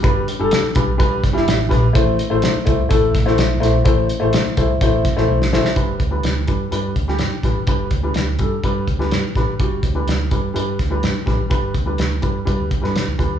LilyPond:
<<
  \new Staff \with { instrumentName = "Upright piano" } { \time 4/4 \key g \major \tempo 4 = 125 <g d' b'>8 r16 <g d' a'>8 r16 <g d' b'>16 r16 <g d' b'>8 r16 <g d' e'>8 r16 <g d' b'>16 r16 | <a e' c''>8 r16 <a e' c''>8 r16 <a e' c''>16 r16 <a e' a'>8 r16 <a e' c''>8 r16 <a e' c''>16 r16 | <a e' c''>8 r16 <a e' c''>8 r16 <a e' c''>16 r16 <a e' c''>8 r16 <a e' c''>8 r16 <a e' c''>16 r16 | <g d' b'>8 r16 <g d' b'>8 r16 <g d' b'>16 r16 <g d' b'>8 r16 <g d' g'>8 r16 <g d' b'>16 r16 |
<g d' b'>8 r16 <g d' b'>8 r16 <g d' a'>16 r16 <g d' b'>8 r16 <g d' b'>8 r16 <g d' b'>16 r16 | <g d' fis'>8 r16 <g d' b'>8 r16 <g d' b'>16 r16 <g d' b'>8 r16 <g d' b'>8 r16 <g d' b'>16 r16 | <g d' b'>8 r16 <g d' b'>8 r16 <g d' b'>16 r16 <g d' b'>8 r16 <g d' b'>8 r16 <g d' b'>16 r16 | }
  \new Staff \with { instrumentName = "Fingered electric bass" } { \clef bass \time 4/4 \key g \major g,,8 r16 g,,16 r8 b,,8. r16 g,,16 g,,16 a,,8 bes,,8 | a,,8 r16 a,,16 r8 c,8 a,,8 a,,8 b,,8 bes,,8 | a,,8 r16 a,,16 r8 c,8 a,,8 r16 a,,16 b,,8 aes,,16 r16 | g,,8 d,8 d,8 g,8 g,8 d,8 g,16 r16 a,,16 aes,,16 |
g,,8 d,8 d,8 g,8 g,8 d,8 g,16 r16 a,,16 aes,,16 | g,,8 d,8 d,8 g,8 g,8 d,8 g,16 r16 a,,16 aes,,16 | g,,8 d,8 d,8 g,8 g,16 d,16 r16 g,8 d,16 ees,8 | }
  \new DrumStaff \with { instrumentName = "Drums" } \drummode { \time 4/4 <hh bd>8 hh8 <hh sn>8 <hh bd>8 <hh bd>8 <hh bd sn>16 sn16 <hh sn>8 <hh bd sn>8 | <hh bd>8 hh8 <hh sn>8 <hh bd>8 <hh bd>8 <hh bd sn>16 sn16 <hh sn>8 <hh sn>8 | <hh bd>8 hh8 <hh sn>8 <hh bd>8 <hh bd>8 <hh bd sn>16 sn16 r16 sn16 sn16 sn16 | <hh bd>8 <hh bd>8 <hh sn>8 <hh bd>8 hh8 <hh bd>16 sn16 <hh sn>8 <hh bd sn>8 |
<hh bd>8 <hh bd>8 <hh sn>8 <hh bd>8 <hh bd>8 <hh bd>16 sn16 <hh sn>8 <hh bd sn>8 | <hh bd>8 <hh bd>8 <hh sn>8 <hh bd>8 hh8 <hh bd sn>8 <hh sn>8 <hh bd sn>8 | <hh bd>8 <hh bd>8 <hh sn>8 <hh bd>8 <hh bd>8 <hh bd>16 sn16 <hh sn>8 <hh bd>8 | }
>>